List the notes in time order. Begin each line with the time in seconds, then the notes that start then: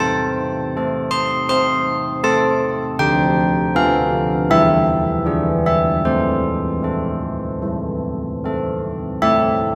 0.00 C4 A5
0.77 C4 A4
1.11 C6
1.49 C4 C6
2.23 C4 A4 A5
2.99 D3 G5
3.75 B3 A4 F5
4.50 E3 E5
5.26 D4 G#4
5.66 E5
6.05 A3 C5
6.82 C4 A4
7.62 E3
8.44 C4 A4
9.22 A3 E5